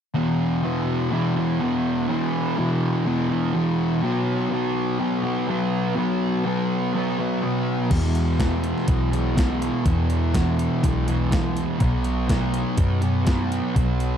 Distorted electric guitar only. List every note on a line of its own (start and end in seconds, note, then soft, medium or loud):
0.14 0.62 E2 loud
0.14 0.62 B2 loud
0.14 0.64 E3 loud
0.63 1.09 E2 medium
0.63 1.11 B2 medium
0.63 1.12 E3 medium
1.10 1.59 E2 loud
1.10 1.37 B2 medium
1.10 1.35 E3 medium
1.36 1.60 B2 medium
1.36 1.61 E3 medium
1.60 2.07 E2 medium
1.60 2.08 B2 medium
1.60 2.09 E3 medium
2.08 2.55 E2 medium
2.08 2.57 B2 loud
2.08 2.57 E3 loud
2.57 3.04 E2 medium
2.57 3.05 B2 medium
2.57 3.06 E3 medium
3.05 3.53 E2 medium
3.05 3.31 B2 loud
3.05 3.29 E3 loud
3.30 3.54 B2 medium
3.30 3.55 E3 medium
3.54 4.01 E2 medium
3.54 4.01 B2 medium
3.54 4.02 E3 medium
4.03 4.51 B2 loud
4.03 4.52 F#3 loud
4.03 4.53 B3 loud
4.51 4.98 B2 medium
4.51 4.98 F#3 medium
4.51 5.01 B3 medium
4.99 5.46 B2 medium
4.99 5.24 F#3 medium
4.99 5.23 B3 loud
5.23 5.48 F#3 medium
5.23 5.49 B3 medium
5.48 5.94 B2 medium
5.48 5.95 F#3 medium
5.48 5.97 B3 medium
5.95 6.44 B2 loud
5.95 6.44 F#3 loud
5.95 6.46 B3 loud
6.45 6.92 B2 medium
6.45 6.93 F#3 medium
6.45 6.95 B3 medium
6.94 7.42 B2 medium
6.94 7.20 F#3 medium
6.94 7.19 B3 loud
7.19 7.43 F#3 medium
7.19 7.44 B3 medium
7.43 7.90 B2 medium
7.43 7.91 F#3 medium
7.43 10.95 B3 medium
7.91 8.39 E2 medium
7.91 8.40 B2 loud
7.91 8.41 E3 loud
8.40 8.85 E2 medium
8.40 8.86 B2 medium
8.40 8.87 E3 medium
8.86 9.35 E2 medium
8.86 9.13 B2 medium
8.86 9.11 E3 medium
9.12 9.37 B2 medium
9.12 9.37 E3 medium
9.36 9.84 E2 medium
9.36 9.85 B2 medium
9.36 9.87 E3 medium
9.86 10.33 E2 loud
9.86 10.34 B2 loud
9.86 10.35 E3 loud
10.34 10.83 E2 medium
10.34 10.84 B2 medium
10.34 10.85 E3 medium
10.84 11.30 E2 medium
10.84 11.09 B2 medium
10.84 11.06 E3 loud
11.07 11.31 B2 medium
11.07 11.32 E3 medium
11.31 11.79 E2 medium
11.31 11.78 B2 medium
11.31 11.79 E3 medium
11.79 12.27 B2 loud
11.79 12.28 F#3 loud
11.79 12.30 B3 loud
12.28 12.76 B2 medium
12.28 12.77 F#3 medium
12.28 12.78 B3 medium
12.77 13.24 B2 loud
12.77 13.02 F#3 medium
12.77 13.00 B3 medium
13.01 13.26 F#3 medium
13.01 13.27 B3 medium
13.26 13.74 B2 medium
13.26 13.75 F#3 medium
13.26 13.76 B3 medium
13.75 14.18 B2 loud
13.75 14.18 F#3 loud
13.75 14.18 B3 loud